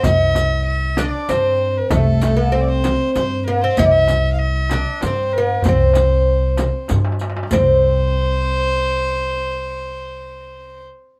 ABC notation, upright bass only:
X:1
M:3/4
L:1/8
Q:1/4=96
K:none
V:1 name="Upright bass" clef=bass
C,,4 G,,2 | C,,4 G,,2 | C,,4 G,,2 | C,,4 G,,2 |
C,,6- | C,,6 |]